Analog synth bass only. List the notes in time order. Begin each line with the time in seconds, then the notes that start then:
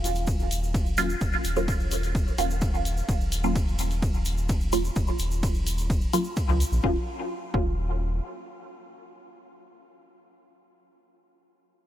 Already playing: D#1
1.21 D#1
1.45 D#1
2.38 D#1
3.09 D#1
4.96 D#1
5.20 D#1
6.49 C#2
6.72 A#1
6.84 D#1
7.54 D#1